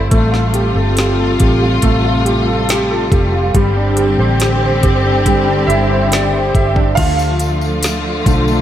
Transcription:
Already playing: A3 E4 C5 D5 E5 F5 G5
0.11 A1 C3 G3 A3 F4, kick, closed hi-hat
0.31 F4, snare
0.54 G4, closed hi-hat
0.75 G1 A4
0.97 G4, snare, closed hi-hat
1.19 A4
1.40 A1 G4, kick, closed hi-hat
1.62 F4
1.82 A1 A3, kick, closed hi-hat
2.04 F4
2.25 G4, closed hi-hat
2.46 A4
2.69 G4, snare, closed hi-hat
2.90 A4
3.11 F1 G4, kick, closed hi-hat
3.32 F4
3.55 G1 D3 G3 C4 G4, kick, closed hi-hat
3.77 D4
3.97 G4, closed hi-hat
4.18 A1 C5
4.40 G4, snare, closed hi-hat
4.63 C5
4.83 G1 G4, kick, closed hi-hat
5.05 D4
5.26 G3, kick, closed hi-hat
5.48 D4
5.67 G1 E4 G4 E5, closed hi-hat
5.91 C5
6.12 G4 D5, snare, closed hi-hat
6.33 C5
6.54 G1 G4 E5, kick, closed hi-hat
6.75 D4, kick
6.95 D2 D3 F3 A3 F4 F5, kick, closed hi-hat, crash
7.19 tambourine
7.39 closed hi-hat, tambourine
7.61 tambourine
7.82 snare, closed hi-hat, tambourine
8.26 B1 D3 F3 A3, kick, closed hi-hat, tambourine
8.48 tambourine

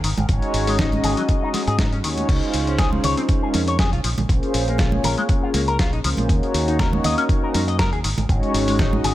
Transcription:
0.04 G#1 D#3, open hi-hat
0.17 G#1, closed hi-hat, high conga, low conga
0.28 G#1 G#3 C#4 D#4 F#4 C#5, kick, closed hi-hat
0.42 closed hi-hat
0.54 G#1, open hi-hat
0.67 G#3, open hi-hat
0.78 G#3 C#4 D#4 F#4 D#5, kick, snare, closed hi-hat, low conga
0.92 closed hi-hat, high conga
1.04 G#1 G#4, open hi-hat, low conga
1.17 F#3, closed hi-hat
1.29 kick, closed hi-hat
1.43 D#4
1.54 G#3 C#4 D#4 F#4 D#5, snare, open hi-hat, high conga
1.67 G#2 G#4, closed hi-hat
1.79 D#4, kick, snare, closed hi-hat
1.93 C#4, closed hi-hat
2.04 D#2 D#3 G#3 C#4 D#4 F#4 C#5, open hi-hat
2.18 closed hi-hat, high conga
2.29 C#2 G#3 C#4 D#4 F4 C5, kick, closed hi-hat, crash
2.43 closed hi-hat
2.54 C#2, open hi-hat
2.67 C#4, closed hi-hat
2.78 G#3 C#4 D#4 F4 G#4 C5, kick, snare, closed hi-hat, low conga
2.93 high conga
3.04 C#2 C#5, open hi-hat, low conga
3.17 C4, closed hi-hat
3.29 G#3 C#4 D#4 F4 C5, kick, closed hi-hat
3.42 G#3 C#4 D#4 F4 G#4 A#4
3.54 F2 C#4, open hi-hat, high conga
3.68 C#5, closed hi-hat
3.79 G#4, kick, snare, closed hi-hat
3.93 C#2 F4, closed hi-hat
4.04 A#1 F3, open hi-hat
4.18 A#1, closed hi-hat, high conga, low conga
4.29 A#1 A#3 C#4 F4 G#4 C5, kick, closed hi-hat
4.43 closed hi-hat
4.54 A#1, open hi-hat
4.68 A#3, closed hi-hat
4.78 A#3 C#4 F4 G#4 C#5, kick, snare, closed hi-hat, low conga
4.92 high conga
5.04 A#1 A#4, open hi-hat, low conga
5.18 G#3, closed hi-hat
5.29 kick, closed hi-hat
5.43 F4
5.54 C#2 A#3 C#4 F4 G#4 C#5, open hi-hat, high conga
5.68 A#4, closed hi-hat
5.79 F4, kick, snare, closed hi-hat
5.93 A#1 D#4, closed hi-hat
6.04 C#2 F3 A#3 C#4 F4 G#4 C5, open hi-hat
6.17 A#1, closed hi-hat, high conga
6.29 D#2 A#3 C#4 D#4 F#4 C#5, kick, closed hi-hat
6.43 closed hi-hat
6.54 D#2, open hi-hat
6.68 D#4, closed hi-hat
6.79 A#3 C#4 D#4 F#4 A#4 C#5, kick, snare, closed hi-hat, low conga
6.93 high conga
7.04 D#2 D#5, open hi-hat, low conga
7.18 C#4, closed hi-hat
7.29 A#3 C#4 D#4 F#4 C#5, kick, closed hi-hat
7.42 A#3 C#4 D#4 F#4 A#4 C5
7.54 F#2 D#4, open hi-hat, high conga
7.68 D#5, closed hi-hat
7.79 A#4, kick, snare, closed hi-hat
7.93 D#2 G#4, closed hi-hat
8.04 G#1 D#3, open hi-hat
8.18 G#1, closed hi-hat, high conga, low conga
8.29 G#1 G#3 C#4 D#4 F#4 C#5, kick, closed hi-hat
8.43 closed hi-hat
8.54 G#1, open hi-hat
8.68 G#3, open hi-hat
8.78 G#3 C#4 D#4 F#4 D#5, kick, snare, closed hi-hat, low conga
8.93 high conga
9.04 G#1 G#4, open hi-hat, low conga

